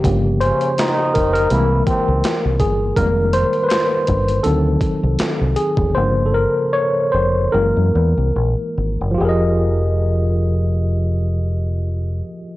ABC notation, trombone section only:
X:1
M:4/4
L:1/16
Q:"Swing 16ths" 1/4=78
K:Fm
V:1 name="Trombone section" clef=bass
z2 [D,D]2 [E,E]4 [=E,=E]2 [C,C]3 z3 | z16 | z16 | z16 |]